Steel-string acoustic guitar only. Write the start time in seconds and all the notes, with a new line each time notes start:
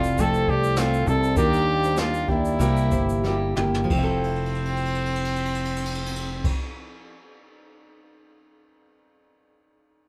Already playing: C4 E4 A4
0.19 F3 A3 C4 E4 A4
0.77 A3 C4 E4 A4
1.06 C4 E4 A4
1.36 D#3 G3 A#3 D4 G4
1.96 G3 A#3 D4 G4
2.28 A#3 D4 G4
2.59 C3 G3 A#3 E4 G4
3.24 G3 A#3 E4 G4
3.56 A#3 E4 G4
3.84 F3
3.92 C4
3.98 E4
4.03 A4